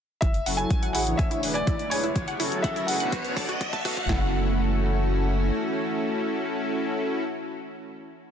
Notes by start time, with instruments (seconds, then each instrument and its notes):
0.21 analog synth bass F#1, synth pluck E4, ambient pad E4, grand piano E5, kick, closed hi-hat, riser
0.34 closed hi-hat
0.46 analog synth bass F#1, supersaw synth F#3 C#4 E4 F#4 A4, synth pluck F#5, open hi-hat
0.57 synth pluck E4, grand piano G#5, closed hi-hat
0.70 analog synth bass A1, kick, closed hi-hat
0.83 synth pluck F#5, closed hi-hat
0.93 analog synth bass A1, supersaw synth C#4 E4 F#4 G#4, synth pluck E4, grand piano F#5, open hi-hat
1.07 supersaw synth E3 D4 E4 G#4 C#5, closed hi-hat
1.17 analog synth bass E1, grand piano E5, synth pluck G#5, kick, closed hi-hat
1.31 synth pluck E4, closed hi-hat
1.43 analog synth bass E1, supersaw synth E3 D4 E4 G#4 B4, open hi-hat
1.54 grand piano D5, synth pluck G#5, closed hi-hat
1.67 analog synth bass E1, synth pluck E4, kick, closed hi-hat
1.79 closed hi-hat
1.90 analog synth bass E1, supersaw synth D4 E4 G#4 B4, grand piano C#5, synth pluck G#5, open hi-hat
2.04 synth pluck E4, closed hi-hat
2.16 analog synth bass F#1, ambient pad F#4, kick, closed hi-hat
2.28 synth pluck F#5, closed hi-hat
2.40 analog synth bass F#1, supersaw synth F#3 C#4 E4 F#4 A4, synth pluck E4, open hi-hat
2.52 closed hi-hat
2.62 analog synth bass F#1, grand piano E5, synth pluck F#5, kick, closed hi-hat
2.76 synth pluck E4, closed hi-hat
2.87 analog synth bass F#1, supersaw synth C#4 E4 F#4 G#4, grand piano F#5, open hi-hat
3.00 supersaw synth B2 B3 D4 F#4 B4, synth pluck F#5, closed hi-hat
3.12 analog synth bass B1, synth pluck F#4, kick, closed hi-hat
3.25 closed hi-hat
3.37 analog synth bass B1, supersaw synth B2 B3 D4 F#4 A4, synth pluck A5, kick, open hi-hat
3.49 synth pluck F#4, closed hi-hat
3.61 analog synth bass F#1, kick, closed hi-hat
3.73 synth pluck A5, kick, closed hi-hat
3.85 analog synth bass B1, supersaw synth B3 D4 F#4 A4, synth pluck F#4, kick, open hi-hat
3.97 kick, closed hi-hat
4.09 analog synth bass F#1, ambient pad E3 A3 C#4 F#4, supersaw synth C#4 E4 F#4 A4, synth pluck E4, grand piano F#5, kick, snare